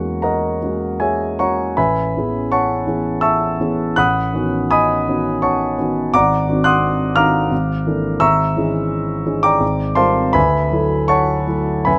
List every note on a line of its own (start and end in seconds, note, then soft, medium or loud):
0.00 1.80 E2 soft
0.00 0.58 G#3 soft
0.00 0.58 A#3 soft
0.00 0.58 C#4 soft
0.00 0.59 F#4 soft
0.00 0.19 C#5 medium
0.00 0.19 F#5 medium
0.00 0.19 A#5 medium
0.00 0.22 C#6 medium
0.22 0.97 A#4 medium
0.22 0.97 D#5 medium
0.22 0.97 F#5 medium
0.22 1.00 A#5 medium
0.63 1.35 G#3 soft
0.63 1.35 A#3 soft
0.63 1.36 C#4 soft
0.63 1.36 F#4 soft
1.00 1.37 G#4 soft
1.00 1.36 C#5 soft
1.00 1.37 E5 medium
1.00 1.38 G#5 medium
1.39 1.74 G#3 soft
1.39 1.74 A#3 soft
1.39 1.74 C#4 soft
1.39 1.75 F#4 soft
1.39 1.75 C#5 medium
1.39 1.75 F#5 medium
1.39 1.75 A#5 medium
1.39 1.77 C#6 medium
1.77 2.14 A1 soft
1.77 2.48 B4 medium
1.77 2.48 E5 medium
1.77 2.49 G#5 medium
1.77 2.52 B5 medium
2.16 2.85 E3 soft
2.16 2.85 B3 soft
2.16 2.85 C#4 soft
2.16 2.86 G#4 soft
2.52 3.20 C#5 medium
2.52 3.20 F#5 medium
2.52 3.20 A5 medium
2.52 3.20 C#6 medium
2.87 3.56 E3 soft
2.87 3.56 B3 soft
2.87 3.56 C#4 soft
2.87 3.57 G#4 soft
3.21 3.92 E5 medium
3.21 3.92 A5 medium
3.21 3.92 C#6 medium
3.21 3.95 E6 medium
3.60 3.93 E3 soft
3.60 3.93 B3 soft
3.60 3.93 C#4 soft
3.60 3.94 G#4 soft
3.96 4.33 A1 soft
3.96 4.66 F#5 medium
3.96 4.67 B5 medium
3.96 4.67 D#6 medium
3.96 4.70 F#6 medium
4.33 5.03 D#3 soft
4.33 5.03 B3 soft
4.33 5.04 C#4 soft
4.33 5.04 F#4 soft
4.71 5.39 D#5 medium
4.71 5.39 G#5 medium
4.71 5.39 B5 medium
4.71 5.43 D#6 medium
5.07 5.74 D#3 soft
5.07 5.75 B3 soft
5.07 5.75 C#4 soft
5.07 5.75 F#4 soft
5.42 5.76 C#5 medium
5.42 5.76 F#5 medium
5.42 5.76 A5 medium
5.42 5.78 C#6 medium
5.78 6.09 D#3 soft
5.78 6.10 B3 soft
5.78 6.10 C#4 soft
5.78 6.10 F#4 soft
6.14 6.47 G#1 medium
6.14 6.62 D5 medium
6.14 6.62 F#5 medium
6.14 6.62 A#5 medium
6.14 6.65 D6 loud
6.48 7.12 D#3 soft
6.48 7.12 C4 soft
6.48 7.12 D4 soft
6.48 7.12 F#4 soft
6.64 7.13 F#5 medium
6.64 7.12 C6 medium
6.64 7.13 D#6 medium
6.64 7.16 F#6 medium
7.16 7.48 D#3 soft
7.16 7.48 C4 soft
7.16 7.48 D4 soft
7.16 7.49 F#4 soft
7.16 8.18 F5 medium
7.16 8.18 A#5 medium
7.16 8.18 D6 medium
7.16 8.21 F6 medium
7.51 7.86 G#1 soft
7.86 8.18 E3 soft
7.86 8.18 A#3 soft
7.86 8.19 D4 soft
7.86 8.18 A4 soft
8.20 8.55 G#1 soft
8.20 9.39 E5 medium
8.20 9.39 A#5 medium
8.20 9.39 C#6 medium
8.20 9.43 E6 loud
8.57 9.22 E3 soft
8.57 9.23 C#4 soft
8.57 9.23 D#4 soft
8.57 9.23 G#4 soft
9.25 9.58 E3 soft
9.25 9.58 C#4 soft
9.25 9.58 D#4 soft
9.25 9.58 G#4 soft
9.43 9.95 D5 medium
9.43 9.94 G5 medium
9.43 9.95 A#5 medium
9.43 9.98 D6 medium
9.60 9.96 G#1 soft
9.95 10.30 G3 soft
9.95 10.30 C4 soft
9.95 10.30 F4 soft
9.95 10.31 A#4 soft
9.95 10.31 C5 medium
9.95 10.32 F5 medium
9.95 10.31 A5 medium
9.95 10.34 C6 medium
10.33 10.71 D2 medium
10.33 11.05 B4 medium
10.33 11.05 E5 medium
10.33 11.06 G#5 medium
10.33 11.09 B5 medium
10.71 11.44 F#3 soft
10.71 11.44 A3 soft
10.71 11.44 E4 soft
10.71 11.44 A4 soft
11.08 11.83 C#5 medium
11.08 11.83 F#5 medium
11.08 11.83 A5 medium
11.08 11.86 C#6 medium
11.47 11.83 F#3 soft
11.47 11.84 A3 soft
11.47 11.83 E4 soft
11.47 11.84 A4 soft
11.85 11.99 F#2 soft
11.85 11.99 B4 medium
11.85 11.99 E5 medium
11.85 11.99 G#5 medium
11.85 11.99 B5 medium